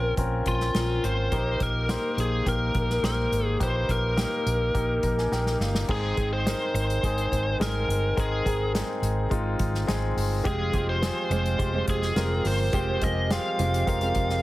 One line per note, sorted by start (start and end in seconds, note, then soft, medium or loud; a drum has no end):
0.00 0.12 A#1 medium
0.00 1.32 A#2 soft
0.00 0.17 C4 medium
0.00 0.18 C#4 medium
0.00 0.18 F4 medium
0.00 0.14 A#4 medium
0.00 0.18 A#4 medium
0.17 0.41 A#1 medium
0.17 0.69 C4 medium
0.17 0.69 C#4 medium
0.17 0.69 F4 medium
0.17 0.70 A#4 medium
0.17 kick medium
0.17 closed hi-hat medium
0.46 0.69 A#1 medium
0.46 1.06 F4 medium
0.46 kick medium
0.46 closed hi-hat medium
0.60 snare soft
0.75 0.98 A#1 medium
0.75 1.26 C4 medium
0.75 1.26 C#4 medium
0.75 1.27 F4 medium
0.75 1.27 A#4 medium
0.75 snare medium
0.75 closed hi-hat medium
1.03 1.27 G#1 medium
1.03 1.63 C5 medium
1.03 closed hi-hat medium
1.32 1.55 A#1 medium
1.32 2.14 A#2 soft
1.32 1.84 A#3 medium
1.32 1.84 D#4 medium
1.32 1.84 G4 medium
1.32 1.84 A#4 medium
1.32 kick loud
1.32 closed hi-hat medium
1.60 1.96 A#1 medium
1.60 2.20 A#4 medium
1.60 kick medium
1.60 closed hi-hat medium
1.89 2.41 A#3 medium
1.89 2.41 D#4 medium
1.89 2.41 G4 medium
1.89 2.41 C5 medium
1.89 snare loud
1.89 closed hi-hat medium
2.17 2.41 A#1 medium
2.17 2.46 G#4 medium
2.17 closed hi-hat medium
2.46 2.70 A#1 medium
2.46 2.98 A#3 medium
2.46 2.98 D#4 medium
2.46 2.98 G4 medium
2.46 2.98 A#4 medium
2.46 3.04 A#4 medium
2.46 kick medium
2.46 closed hi-hat medium
2.75 2.98 A#1 medium
2.75 kick medium
2.75 closed hi-hat medium
2.90 snare soft
3.03 3.26 A#1 medium
3.03 3.55 A#3 medium
3.03 3.55 D#4 medium
3.03 3.55 G4 medium
3.03 3.46 A#4 medium
3.03 3.55 C5 medium
3.03 snare loud
3.03 closed hi-hat medium
3.31 3.55 G#1 medium
3.31 closed hi-hat medium
3.46 3.57 G#4 medium
3.60 3.84 A#1 medium
3.60 4.42 A#2 soft
3.60 4.12 A#3 medium
3.60 4.12 D#4 medium
3.60 4.12 G4 medium
3.60 3.67 B4 medium
3.60 3.91 C5 medium
3.60 kick loud
3.60 closed hi-hat medium
3.67 4.15 C5 medium
3.89 4.24 A#1 medium
3.89 5.57 A#4 medium
3.89 kick medium
3.89 closed hi-hat medium
4.17 4.69 A#3 medium
4.17 4.69 D#4 medium
4.17 4.69 G4 medium
4.17 4.69 A#4 medium
4.17 snare loud
4.17 closed hi-hat medium
4.46 4.70 A#1 medium
4.46 closed hi-hat medium
4.74 4.98 A#1 medium
4.74 5.26 A#3 medium
4.74 5.26 D#4 medium
4.74 5.26 G4 medium
4.74 5.26 A#4 medium
4.74 kick medium
4.74 closed hi-hat medium
5.03 5.27 A#1 medium
5.03 5.17 A#5 medium
5.03 kick medium
5.03 closed hi-hat medium
5.18 5.31 G#5 medium
5.18 snare soft
5.32 5.55 A#1 medium
5.32 5.83 A#3 medium
5.32 5.83 D#4 medium
5.32 5.84 G4 medium
5.32 5.84 A#4 medium
5.32 5.59 G5 medium
5.32 snare soft
5.46 snare medium
5.59 5.83 G1 medium
5.59 5.87 F5 medium
5.59 snare medium
5.75 snare medium
5.88 6.12 G#1 medium
5.88 6.70 G#2 soft
5.88 6.14 G#3 medium
5.88 6.15 C4 medium
5.88 6.15 D#4 medium
5.88 6.15 G#4 medium
5.88 6.30 G#4 medium
5.88 kick loud
5.88 crash medium
6.17 6.53 G#1 medium
6.17 6.43 G#3 medium
6.17 6.43 C4 medium
6.17 6.43 D#4 medium
6.17 6.44 G#4 medium
6.17 kick medium
6.17 closed hi-hat medium
6.33 6.74 C5 medium
6.46 6.98 G#3 medium
6.46 6.98 C4 medium
6.46 6.98 D#4 medium
6.46 6.98 A#4 medium
6.46 snare medium
6.46 closed hi-hat medium
6.74 6.98 G#1 medium
6.74 7.56 C5 medium
6.74 closed hi-hat medium
6.90 closed hi-hat soft
7.03 7.27 G#1 medium
7.03 7.55 G#3 medium
7.03 7.55 C4 medium
7.03 7.55 D#4 medium
7.03 7.55 G#4 medium
7.03 kick medium
7.03 closed hi-hat medium
7.18 closed hi-hat medium
7.32 7.55 G#1 medium
7.32 kick medium
7.32 closed hi-hat medium
7.59 7.83 G#1 medium
7.59 8.11 G#3 medium
7.59 8.12 C4 medium
7.59 8.12 D#4 medium
7.59 8.12 G#4 medium
7.59 8.19 A#4 medium
7.59 snare loud
7.59 closed hi-hat medium
7.88 8.12 G1 medium
7.88 closed hi-hat medium
8.17 8.41 G#1 medium
8.17 8.99 G#2 medium
8.17 8.43 G#3 medium
8.17 8.43 C4 medium
8.17 8.43 D#4 medium
8.17 8.72 G#4 medium
8.17 8.43 A#4 medium
8.17 kick loud
8.17 closed hi-hat medium
8.46 8.81 G#1 medium
8.46 8.71 G#3 medium
8.46 8.71 C4 medium
8.46 8.72 D#4 soft
8.46 8.72 G#4 medium
8.46 kick medium
8.46 closed hi-hat medium
8.74 9.26 G#3 medium
8.74 9.26 C4 medium
8.74 9.26 D#4 medium
8.74 9.26 G#4 medium
8.74 snare loud
8.74 closed hi-hat medium
9.02 9.26 G#1 medium
9.02 closed hi-hat medium
9.30 9.55 G#1 medium
9.30 9.82 G#3 medium
9.30 9.83 C4 medium
9.30 9.83 D#4 medium
9.30 9.83 F4 medium
9.30 kick medium
9.30 closed hi-hat medium
9.59 9.83 G#1 medium
9.59 kick medium
9.59 closed hi-hat medium
9.74 snare soft
9.87 10.12 G#1 medium
9.87 10.39 G#3 medium
9.87 10.39 C4 medium
9.87 10.39 D#4 medium
9.87 10.40 G#4 medium
9.87 snare loud
9.87 closed hi-hat medium
10.16 10.40 G1 medium
10.16 open hi-hat medium
10.44 10.69 F1 medium
10.44 10.73 F3 medium
10.44 10.70 G#3 medium
10.44 10.73 G#3 medium
10.44 10.70 C4 medium
10.44 10.74 C4 medium
10.44 10.70 F4 medium
10.44 10.71 G4 medium
10.44 10.74 G4 medium
10.44 10.86 G#4 medium
10.44 kick loud
10.44 closed hi-hat medium
10.73 11.09 F1 medium
10.73 11.29 F3 medium
10.73 10.99 G#3 medium
10.73 11.30 G#3 medium
10.73 10.99 C4 medium
10.73 11.31 C4 medium
10.73 10.99 F4 medium
10.73 10.99 G4 medium
10.73 11.30 G4 medium
10.73 kick medium
10.73 closed hi-hat medium
10.89 11.31 C5 medium
11.02 11.53 G#3 medium
11.02 11.54 C4 medium
11.02 11.54 F4 medium
11.02 11.54 G#4 medium
11.02 snare loud
11.02 closed hi-hat medium
11.30 11.54 F1 medium
11.30 11.73 F3 medium
11.30 11.74 G#3 medium
11.30 11.73 C4 medium
11.30 11.72 G4 medium
11.30 11.85 C5 medium
11.30 closed hi-hat medium
11.46 closed hi-hat soft
11.58 11.83 F1 loud
11.58 12.10 G#3 medium
11.58 12.11 C4 medium
11.58 12.11 F4 medium
11.58 12.11 G4 medium
11.58 kick medium
11.58 closed hi-hat medium
11.73 12.14 F3 medium
11.73 12.15 G#3 medium
11.73 12.15 C4 medium
11.73 12.16 G4 medium
11.88 12.11 F1 medium
11.88 12.48 G#4 medium
11.88 kick medium
11.88 closed hi-hat medium
12.02 snare soft
12.15 12.39 F1 medium
12.15 12.71 F3 medium
12.15 12.68 G#3 medium
12.15 12.72 G#3 medium
12.15 12.68 C4 medium
12.15 12.73 C4 medium
12.15 12.68 F4 medium
12.15 12.72 G4 medium
12.15 12.68 A#4 medium
12.15 snare loud
12.15 closed hi-hat medium
12.45 12.68 G1 medium
12.45 13.04 C5 medium
12.45 open hi-hat medium
12.72 12.97 F1 medium
12.72 13.00 F3 medium
12.72 13.01 G#3 medium
12.72 12.99 G#3 medium
12.72 13.01 C4 medium
12.72 12.99 C4 medium
12.72 13.00 F4 medium
12.72 13.02 G4 medium
12.72 13.00 G4 medium
12.72 kick loud
12.72 closed hi-hat medium
13.01 13.37 F1 loud
13.01 13.57 F3 medium
13.01 13.27 G#3 medium
13.01 13.59 G#3 medium
13.01 13.28 C4 medium
13.01 13.59 C4 medium
13.01 13.28 F4 medium
13.01 13.59 G4 medium
13.01 13.28 G#4 medium
13.01 13.30 D#5 medium
13.01 kick medium
13.01 closed hi-hat medium
13.30 13.82 G#3 medium
13.30 13.82 C4 medium
13.30 13.82 F4 medium
13.30 13.82 G4 medium
13.30 13.88 F5 loud
13.30 snare loud
13.30 closed hi-hat medium
13.59 13.82 F1 loud
13.59 14.02 F3 medium
13.59 14.01 G#3 medium
13.59 14.01 C4 medium
13.59 14.00 G4 medium
13.59 closed hi-hat medium
13.74 closed hi-hat medium
13.86 14.11 F1 loud
13.86 14.39 G#3 medium
13.86 14.39 C4 medium
13.86 14.39 F4 medium
13.86 14.39 A#4 medium
13.86 14.42 F5 medium
13.86 kick medium
13.86 closed hi-hat medium
14.01 14.42 F3 medium
14.01 14.42 G#3 medium
14.01 14.42 C4 medium
14.01 14.42 G4 medium
14.01 closed hi-hat medium
14.15 14.39 F1 medium
14.15 kick medium
14.15 closed hi-hat medium
14.29 snare soft